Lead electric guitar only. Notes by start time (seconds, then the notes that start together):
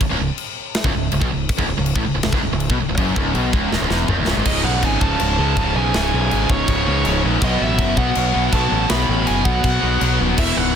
4.47 D#5
4.64 F#5
4.84 G#5
5.01 A5
5.76 G#5
5.95 G#5
6.50 C#5
7.44 D#5
7.62 E5
7.98 F#5
8.53 A5
8.90 B5
9.27 G#5
9.45 F#5
10.39 E5
10.57 F#5